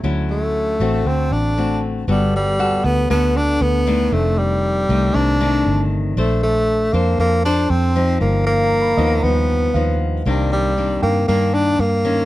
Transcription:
0.04 0.76 D2 medium
0.04 1.03 D3 medium
0.04 0.76 F#3 medium
0.04 0.76 C#4 soft
0.04 0.76 E4 medium
0.31 1.08 A3 medium
0.80 1.04 A1 medium
0.80 1.53 A3 medium
0.80 1.53 C4 medium
0.80 1.53 F#4 medium
1.05 1.29 D2 medium
1.05 2.05 D3 soft
1.05 1.34 C4 medium
1.31 2.04 A1 medium
1.31 1.83 D4 medium
1.57 2.04 A3 soft
1.57 2.04 C4 soft
1.57 2.04 F#4 medium
2.08 2.80 G1 medium
2.08 3.07 G3 medium
2.08 2.33 G3 medium
2.08 2.55 B3 medium
2.08 2.55 F#4 medium
2.08 2.55 A4 medium
2.36 2.87 G3 medium
2.59 3.06 B3 soft
2.59 3.06 F#4 medium
2.59 3.06 A4 medium
2.59 3.23 F#5 medium
2.84 3.08 D2 medium
2.84 3.10 B3 medium
3.10 3.58 D2 medium
3.10 4.09 D3 medium
3.10 3.82 B3 medium
3.10 3.38 B3 medium
3.10 3.83 F#4 medium
3.10 3.83 A4 medium
3.37 3.63 D4 medium
3.61 4.08 D2 medium
3.61 4.15 B3 medium
3.87 4.85 D#3 medium
3.87 4.85 A3 medium
3.87 4.85 D4 medium
4.12 4.85 F1 medium
4.12 5.12 F2 soft
4.12 4.40 A3 medium
4.38 5.17 G3 loud
4.89 5.13 C2 medium
4.89 5.36 D#3 medium
4.89 5.36 A3 medium
4.89 5.36 D4 medium
5.15 5.62 C2 medium
5.15 6.14 C3 medium
5.15 5.91 D4 medium
5.40 6.15 D#3 medium
5.40 6.15 A3 medium
5.40 6.15 D4 medium
5.66 6.13 G1 medium
6.16 6.89 A#1 medium
6.16 6.41 A3 medium
6.16 6.89 D4 medium
6.16 6.90 A4 medium
6.16 6.90 C5 medium
6.43 6.94 A3 loud
6.93 7.17 F2 medium
6.93 7.18 A#3 medium
6.93 7.40 D4 medium
6.93 7.41 A4 soft
6.93 7.41 C5 medium
7.18 7.66 F2 medium
7.18 7.95 F3 medium
7.18 7.43 A#3 loud
7.45 7.92 D4 medium
7.45 7.72 D4 medium
7.45 7.92 A4 medium
7.45 7.92 C5 medium
7.70 8.17 F2 loud
7.70 8.20 C4 loud
7.96 8.94 F3 medium
7.96 8.94 D#4 medium
8.21 8.94 G1 medium
8.21 9.21 G2 soft
8.21 8.45 A#3 medium
8.46 9.25 A#3 loud
8.46 9.10 F5 soft
8.64 9.25 A#5 soft
8.82 9.40 B5 soft
8.97 9.21 D#2 medium
8.97 9.70 F3 medium
8.97 9.70 B3 medium
8.97 9.71 D#4 medium
8.97 9.61 D#5 medium
9.23 9.71 D#2 medium
9.23 10.23 G2 medium
9.23 10.00 B3 medium
9.74 10.22 D#2 medium
9.74 10.22 F3 medium
9.74 10.22 B3 medium
9.74 10.22 D#4 soft
9.74 10.38 F5 soft
10.26 10.98 C2 medium
10.26 11.25 C3 medium
10.26 10.73 D#3 medium
10.26 10.50 G3 medium
10.26 10.73 A#3 medium
10.26 10.73 D4 medium
10.52 10.99 G3 medium
10.78 11.24 D#3 soft
10.78 11.24 A#3 soft
10.78 11.24 D4 soft
11.03 11.26 G2 loud
11.03 11.26 A#3 medium
11.03 11.66 G5 soft
11.28 12.25 G2 soft
11.28 11.75 G2 medium
11.28 11.79 D#3 medium
11.28 11.56 A#3 medium
11.28 11.79 A#3 medium
11.28 11.79 D4 medium
11.54 11.82 D4 medium
11.79 12.25 G2 medium
11.79 12.25 A#3 medium
12.05 12.25 D#3 medium
12.05 12.25 C#4 medium

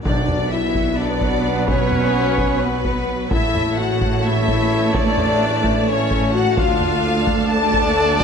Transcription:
0.03 3.27 B1 medium
0.03 3.27 B2 medium
0.03 0.71 B2 loud
0.03 3.27 F#3 loud
0.03 3.27 F#3 medium
0.03 3.27 B3 medium
0.03 0.48 D4 loud
0.03 3.27 F#4 loud
0.03 3.26 B4 medium
0.03 3.27 B4 medium
0.03 0.49 D5 medium
0.03 3.27 F#5 loud
0.03 taiko loud
0.28 taiko low-mid medium
0.51 0.99 E4 loud
0.51 0.98 E5 medium
0.51 0.99 E5 medium
0.75 taiko medium
0.98 1.68 D4 loud
0.98 1.68 D5 medium
0.98 1.69 D5 loud
1.21 taiko medium
1.68 2.61 C#4 loud
1.68 2.59 C#5 loud
1.68 2.60 C#5 loud
1.68 taiko loud
1.91 taiko low-mid medium
2.38 taiko loud
2.60 3.31 B3 loud
2.60 3.31 B4 medium
2.60 3.31 B4 loud
2.84 taiko medium
3.30 6.53 A1 medium
3.30 6.53 A2 medium
3.30 6.54 C#3 medium
3.30 6.41 E3 loud
3.30 6.57 A3 loud
3.30 6.41 A3 loud
3.30 6.53 A3 medium
3.30 6.57 E4 loud
3.30 3.77 E4 loud
3.30 6.56 A4 loud
3.30 6.26 C#5 medium
3.30 3.77 E5 loud
3.30 6.56 A5 loud
3.30 taiko loud
3.55 taiko low-mid medium
3.77 4.24 F#4 loud
3.77 4.24 F#5 loud
4.01 taiko medium
4.24 4.94 E4 loud
4.24 4.94 E5 loud
4.24 4.95 E5 loud
4.48 taiko medium
4.94 5.86 D4 loud
4.94 5.88 D5 loud
4.94 5.86 D5 loud
4.94 taiko loud
5.18 taiko low-mid medium
5.64 taiko loud
5.87 6.35 C#4 loud
5.87 6.34 C#5 loud
5.87 6.33 C#5 loud
6.11 taiko medium
6.34 6.57 F#4 loud
6.34 6.57 F#5 loud
6.56 8.24 D2 loud
6.56 8.24 D3 loud
6.56 8.24 A3 loud
6.56 8.24 D4 loud
6.56 7.33 F4 loud
6.56 8.24 A4 loud
6.56 8.24 D5 loud
6.56 7.50 F5 loud
6.56 7.49 F5 loud
6.56 8.24 A5 loud
6.56 taiko loud
6.81 taiko low-mid medium
7.27 taiko loud
7.49 8.19 A4 loud
7.49 8.18 A5 loud
7.49 8.20 A5 loud
7.74 taiko loud
8.20 8.24 G4 loud
8.20 8.24 G5 loud
8.20 taiko loud

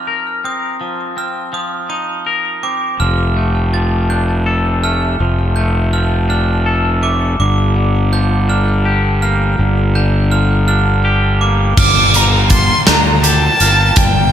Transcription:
0.00 0.80 F3 medium
0.00 0.43 C4 soft
0.00 1.54 D#4 medium
0.00 0.45 F6 medium
0.07 1.91 A#4 medium
0.44 1.16 C4 soft
0.44 1.18 D#6 medium
0.81 1.52 F3 soft
1.17 2.62 C4 soft
1.17 1.54 F6 medium
1.53 2.99 F3 medium
1.53 1.89 D#6 medium
1.89 3.00 D#4 medium
1.89 2.63 D#6 medium
2.26 3.00 A#4 medium
2.63 3.00 C4 soft
2.63 3.00 D6 medium
3.00 5.16 F1 medium
3.00 3.73 F3 medium
3.00 3.73 F6 medium
3.37 4.82 A3 medium
3.74 5.20 F3 medium
3.74 4.10 A6 medium
4.10 6.29 D4 medium
4.10 4.83 G6 medium
4.46 6.29 A4 medium
4.83 5.56 A3 medium
4.83 5.57 F6 medium
5.20 7.35 F1 medium
5.20 5.93 F3 medium
5.56 7.01 A3 medium
5.56 5.93 G6 medium
5.93 7.43 F3 medium
5.93 6.29 F6 medium
6.29 8.48 D4 medium
6.29 7.03 F6 medium
6.66 7.39 A4 medium
7.02 7.39 A3 medium
7.02 7.39 D6 medium
7.40 9.55 G1 medium
7.40 9.58 G2 medium
7.40 8.13 D6 medium
7.76 9.59 D3 medium
8.12 9.95 F3 medium
8.12 8.49 G6 medium
8.49 10.32 D4 medium
8.49 9.21 F6 medium
8.85 10.68 G4 medium
9.22 11.05 A#3 medium
9.22 9.95 F6 medium
9.58 11.74 G1 medium
9.58 11.41 G2 medium
9.95 11.78 D3 medium
9.95 10.32 G6 medium
10.32 11.78 F3 medium
10.32 10.67 F6 medium
10.68 11.78 D4 medium
10.68 11.41 F6 medium
11.05 11.78 G4 medium
11.41 11.78 A#3 medium
11.41 11.78 D6 medium
11.77 12.68 G1 medium
11.77 13.97 G2 medium
11.77 14.32 F4 medium
11.77 14.32 A#4 medium
11.77 14.32 G5 medium
11.77 12.17 D6 medium
11.77 12.51 F6 medium
11.77 kick medium
11.77 crash medium
12.14 13.97 F3 medium
12.14 12.50 A#5 medium
12.14 closed hi-hat medium
12.50 13.61 A#3 medium
12.50 12.85 C6 medium
12.50 12.87 A6 medium
12.50 kick medium
12.50 closed hi-hat medium
12.87 13.48 D2 medium
12.87 14.32 D4 medium
12.87 13.22 A#5 medium
12.87 13.61 G6 medium
12.87 snare loud
12.87 closed hi-hat medium
13.22 14.32 G4 medium
13.22 13.98 A5 medium
13.22 closed hi-hat medium
13.60 13.90 G1 medium
13.60 14.32 A#3 medium
13.60 14.32 F6 medium
13.60 closed hi-hat medium
13.96 14.32 G1 medium
13.96 14.32 G2 medium
13.96 14.32 G5 medium
13.96 kick medium
13.96 closed hi-hat medium

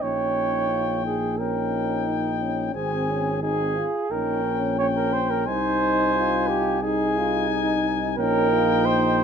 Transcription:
0.01 2.71 A#1 medium
0.01 0.72 C#4 medium
0.01 1.22 D#4 medium
0.01 1.05 C#5 medium
0.01 1.36 G5 medium
0.71 1.07 F4 medium
1.05 1.41 D#4 soft
1.05 1.41 G#4 medium
1.38 2.09 C#4 medium
1.38 2.76 D#4 medium
1.38 2.41 A#4 medium
1.38 2.72 G5 medium
2.07 2.41 D#4 medium
2.41 2.77 C#4 medium
2.74 3.81 G#1 medium
2.74 3.43 C4 medium
2.74 3.10 C4 medium
2.74 3.38 G#4 medium
2.74 3.41 G#5 medium
3.09 3.42 C#4 medium
3.43 3.86 C4 medium
3.43 3.78 D#4 medium
3.43 4.12 G#4 medium
3.43 3.86 G#5 medium
3.76 4.10 F4 medium
4.10 5.48 A#1 medium
4.10 4.76 C#4 medium
4.10 4.44 D#4 medium
4.10 4.78 A#4 medium
4.10 4.75 G5 medium
4.44 5.18 C#4 medium
4.79 5.49 C#4 medium
4.79 4.86 C#5 medium
4.79 5.49 G5 medium
4.96 5.14 A#4 medium
5.13 5.32 C5 medium
5.30 5.46 A#4 medium
5.46 8.19 C2 medium
5.46 6.11 D#4 medium
5.46 6.82 D#4 medium
5.46 6.49 C5 loud
5.46 6.82 G#5 medium
6.15 6.81 F4 medium
6.48 6.84 G4 medium
6.82 8.16 D#4 medium
6.82 7.18 D#4 medium
6.82 7.84 G#4 medium
6.82 8.16 G#5 medium
7.17 7.49 F4 medium
7.50 8.17 D#4 medium
8.17 9.24 A#1 medium
8.17 8.51 C#4 medium
8.17 9.24 D#4 medium
8.17 8.87 A#4 loud
8.17 9.24 G5 medium
8.52 8.88 F4 medium
8.85 9.24 D#4 medium
8.85 9.24 C5 loud

